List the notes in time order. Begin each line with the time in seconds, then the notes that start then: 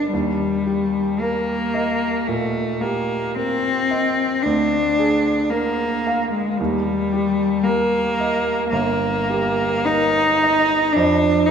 Already playing: D4 G4 A#4 D5
0.11 D#2 G3
0.66 G4
1.21 A#3 A#4
1.74 D#5
2.27 A#2 A3
2.81 A#3 G4
3.35 C4 A#4
3.91 D#5
4.43 D2 D4
4.99 G#4
5.51 A#3 A#4
6.07 F5
6.31 G#3
6.57 D#2 G3
7.13 G4
7.64 A#3 A#4
8.20 D#5
8.70 G1 A#3
9.30 G4
9.85 D#4 A#4
10.43 D#5
10.93 F2 D4
11.46 D#4